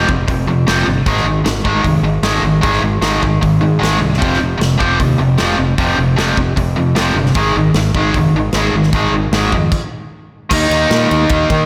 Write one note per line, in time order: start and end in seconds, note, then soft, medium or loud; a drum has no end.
0.08 0.27 F1 medium
0.08 0.26 F2 medium
0.08 0.26 C3 medium
0.08 kick medium
0.28 0.46 F1 medium
0.28 0.45 F2 medium
0.28 0.45 C3 medium
0.28 kick medium
0.28 open hi-hat soft
0.47 0.65 F2 medium
0.47 0.65 C3 medium
0.67 0.85 F1 medium
0.67 0.84 F2 medium
0.67 0.85 C3 medium
0.67 0.86 F3 loud
0.67 snare loud
0.67 open hi-hat soft
0.86 1.06 G1 medium
0.86 1.04 F2 medium
0.86 1.04 C3 medium
1.06 1.24 G#1 medium
1.06 1.24 G#2 medium
1.06 1.25 D#3 medium
1.06 1.25 G#3 loud
1.06 kick loud
1.06 open hi-hat soft
1.17 snare soft
1.24 1.43 G#1 medium
1.24 1.43 G#2 medium
1.24 1.44 D#3 medium
1.44 1.64 G#1 medium
1.44 1.63 G#2 medium
1.44 1.63 D#3 medium
1.44 snare loud
1.44 open hi-hat soft
1.64 1.84 G#1 medium
1.64 1.81 G#2 medium
1.64 1.82 D#3 loud
1.64 1.84 G#3 loud
1.64 kick medium
1.82 2.02 F1 medium
1.82 2.01 G#2 medium
1.82 2.02 D#3 medium
1.82 kick medium
1.82 open hi-hat soft
2.03 2.22 G#1 medium
2.03 2.22 G#2 medium
2.03 2.22 D#3 medium
2.22 2.42 G#1 medium
2.22 2.41 G#2 medium
2.22 2.41 D#3 medium
2.22 2.43 G#3 loud
2.22 snare loud
2.22 open hi-hat medium
2.42 2.62 G#1 medium
2.42 2.60 G#2 medium
2.42 2.61 D#3 medium
2.61 2.82 G#1 medium
2.61 2.80 G#2 medium
2.61 2.81 D#3 medium
2.61 2.81 G#3 medium
2.61 kick loud
2.61 open hi-hat soft
2.73 snare soft
2.81 3.01 G#1 medium
2.81 3.00 G#2 medium
2.81 3.00 D#3 medium
3.01 3.20 G#1 medium
3.01 3.21 G#2 medium
3.01 3.21 D#3 medium
3.01 3.21 G#3 medium
3.01 snare loud
3.01 open hi-hat medium
3.22 3.41 G#1 medium
3.22 3.40 G#2 medium
3.22 3.40 D#3 medium
3.22 kick medium
3.41 3.61 G#1 medium
3.41 3.59 G#2 medium
3.41 3.60 D#3 medium
3.41 kick medium
3.41 open hi-hat soft
3.61 3.78 G#2 medium
3.61 3.80 G#2 medium
3.61 3.79 D#3 medium
3.79 4.00 G#1 medium
3.79 3.97 G#2 medium
3.79 3.98 D#3 medium
3.79 3.99 G#3 loud
3.83 snare medium
3.83 open hi-hat soft
3.99 4.19 C2 medium
3.99 4.18 G#2 medium
3.99 4.18 D#3 medium
4.14 snare soft
4.18 4.40 F1 medium
4.18 4.37 F2 medium
4.18 4.38 C3 medium
4.18 4.39 F3 medium
4.18 kick medium
4.23 open hi-hat soft
4.34 snare soft
4.38 4.59 F1 medium
4.38 4.57 F2 medium
4.38 4.57 C3 medium
4.58 4.79 F1 medium
4.58 4.77 F2 medium
4.58 4.77 C3 medium
4.58 snare loud
4.58 open hi-hat soft
4.78 4.99 F1 medium
4.78 4.98 F2 medium
4.78 4.98 C3 medium
4.78 4.98 F3 medium
4.78 kick medium
4.99 5.18 D#2 medium
4.99 5.17 F2 medium
4.99 5.18 C3 medium
4.99 kick medium
4.99 open hi-hat soft
5.19 5.38 F1 medium
5.19 5.37 F2 medium
5.19 5.37 C3 medium
5.38 5.58 F1 medium
5.38 5.56 F2 loud
5.38 5.57 C3 loud
5.38 5.57 F3 loud
5.38 snare loud
5.38 open hi-hat soft
5.57 5.77 F1 medium
5.57 5.76 F2 medium
5.57 5.76 C3 medium
5.78 5.97 F1 medium
5.78 5.96 F2 medium
5.78 5.96 C3 loud
5.78 5.97 F3 loud
5.78 kick medium
5.78 open hi-hat soft
5.97 6.16 F1 medium
5.97 6.15 F2 medium
5.97 6.15 C3 medium
6.16 6.36 F1 medium
6.16 6.35 F2 loud
6.16 6.36 C3 medium
6.16 6.36 F3 medium
6.16 snare loud
6.16 open hi-hat soft
6.37 6.56 F1 medium
6.37 6.55 F2 medium
6.37 6.55 C3 medium
6.37 kick medium
6.57 6.75 F1 medium
6.57 6.74 F2 medium
6.57 6.74 C3 medium
6.57 kick medium
6.57 open hi-hat soft
6.77 6.94 F2 medium
6.77 6.94 C3 medium
6.95 7.14 F1 medium
6.95 7.14 F2 medium
6.95 7.15 C3 medium
6.95 7.15 F3 loud
6.95 snare loud
6.95 open hi-hat soft
7.14 7.34 G1 medium
7.14 7.33 F2 medium
7.14 7.34 C3 medium
7.26 snare soft
7.34 7.54 G#1 medium
7.34 7.54 G#2 medium
7.34 7.54 D#3 medium
7.34 7.55 G#3 medium
7.34 kick loud
7.34 open hi-hat soft
7.55 7.73 G#1 medium
7.55 7.73 G#2 medium
7.55 7.74 D#3 medium
7.74 7.93 G#1 medium
7.74 7.93 G#2 medium
7.74 7.93 D#3 medium
7.74 snare loud
7.74 open hi-hat soft
7.95 8.13 G#1 medium
7.95 8.14 G#2 medium
7.95 8.14 D#3 medium
7.95 8.14 G#3 loud
7.95 kick medium
8.14 8.33 F1 medium
8.14 8.33 G#2 medium
8.14 8.33 D#3 medium
8.14 kick medium
8.14 open hi-hat soft
8.33 8.52 G#1 medium
8.33 8.53 G#2 medium
8.33 8.53 D#3 medium
8.53 8.72 G#1 medium
8.53 8.73 G#2 medium
8.53 8.73 D#3 medium
8.53 8.73 G#3 loud
8.53 snare loud
8.53 open hi-hat soft
8.73 8.92 G#1 medium
8.73 8.92 G#2 medium
8.73 8.92 D#3 medium
8.83 snare soft
8.93 9.11 G#1 medium
8.93 9.12 G#2 medium
8.93 9.12 D#3 medium
8.93 9.13 G#3 loud
8.93 kick loud
8.93 open hi-hat soft
9.12 9.31 G#1 medium
9.12 9.31 G#2 medium
9.12 9.31 D#3 medium
9.31 9.50 G#1 medium
9.31 9.51 G#2 medium
9.31 9.52 D#3 medium
9.31 9.52 G#3 medium
9.31 snare loud
9.31 open hi-hat soft
9.52 9.71 F2 medium
9.52 9.71 G#2 medium
9.52 9.71 D#3 medium
9.52 kick medium
9.72 kick medium
9.72 crash medium
10.50 10.66 D#2 loud
10.50 11.66 D#3 medium
10.50 11.66 A#3 medium
10.50 11.66 D#4 loud
10.50 kick loud
10.50 crash loud
10.70 10.85 D#2 medium
10.70 ride medium
10.91 11.05 A#2 medium
10.91 snare loud
10.91 ride medium
11.11 11.25 D#2 medium
11.11 ride medium
11.29 11.44 D#2 medium
11.29 kick loud
11.29 ride loud
11.50 11.64 D#3 medium
11.50 kick medium
11.50 ride medium